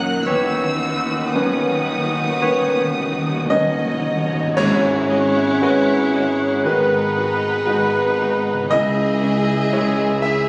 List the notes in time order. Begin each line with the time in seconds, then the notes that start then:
Already playing: D#2 A#2 F#3 A#3 C#4 D#4 A#4 F#5
0.00 F#3 F#6
0.08 D#4
0.13 B3
0.17 C#4
0.21 F#4 E6
0.26 D#2 D#3 E3 B3 C#4 D#4 B4 C#5
0.35 D#3
0.42 D#3
0.50 D#3
0.57 D#3
0.65 D#3
0.80 D#3
0.88 D#3
1.19 D#3
1.28 D#3 D#6
1.34 D#3 F#3 C#4 B4
1.42 D#3
1.50 D#3
1.58 D#3
1.65 D#3
1.73 D#3
1.82 D#3
1.89 D#3
1.97 D#3
2.05 D#3
2.13 D#3
2.21 D#3
2.29 D#3
2.36 D#3
2.42 D#3 B4 C#5
2.60 D#3
2.68 D#3
2.76 D#3
2.84 D#3
2.91 D#3
2.99 D#3
3.06 D#3
3.14 D#3
3.22 D#3
3.29 D#3
3.37 D#3
3.45 D#3 F#4 D#5
3.50 D#3 F#3 C#4 D#4 B4 D#5
3.60 D#3
3.69 D#3
3.77 D#3
3.85 D#3
3.93 D#3
4.00 D#3
4.08 D#3
4.16 D#3
4.23 D#3
4.31 D#3
4.38 G#2 D#3
4.43 B3
4.47 D#3 F#4
4.52 G#4 C#5
4.56 G#1 G#2 C#4 E4 F#4 G#4 C#5 D#5 F#5, concert bass drum, crash
5.10 F#4 D#5
5.61 G#1 G#2 G#3 F#4 B4 D#5
6.14 F#4 D#5
6.63 G#1 G#2 D#3 B3 D#4 F#4 B4
7.17 D#4 F#4
7.66 G#1 G#2 G#3 D#4 F#4 B4
8.21 D#4 F#4
8.52 C#3
8.56 C#4
8.61 E4
8.65 G#4 D#5
8.70 C#2 C#4 E4 G#4 D#5 E5
9.23 C#4 E4
9.72 C#2 G#3 C#4 E4 C#5
10.22 C#4 E4 G#4 E5